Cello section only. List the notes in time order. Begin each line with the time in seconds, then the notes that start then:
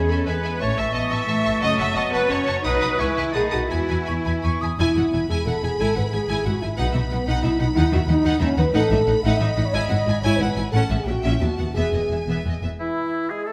Already playing: C#4
0.28 B3
0.62 A3
0.95 B3
1.29 A3
1.96 B3
2.29 C#4
2.64 D#4
2.99 E4
3.33 D#4
3.70 E4
4.79 E2
4.96 E2
5.12 E2
5.29 E2
5.46 E2
5.63 E2
5.80 G#2
5.97 G#2
6.14 G#2
6.29 G#2
6.46 G#2
6.62 G#2
6.78 B2
6.95 B2
7.11 B2
7.27 B2
7.43 B2
7.60 B2
7.75 D#3
7.92 D#3
8.08 D#3
8.24 D#3
8.41 D#3
8.57 D#3
8.74 A2
8.91 A2
9.08 A2
9.25 A2
9.40 A2
9.56 A2
9.73 G#2
9.90 G#2
10.06 G#2
10.23 G#2
10.40 G#2
10.56 G#2
10.72 A2
10.90 A2
11.06 A#2
11.25 A#2
11.41 D#2
11.58 D#2
11.76 E2
11.93 E2
12.10 E2
12.27 E2
12.46 E2
12.63 E2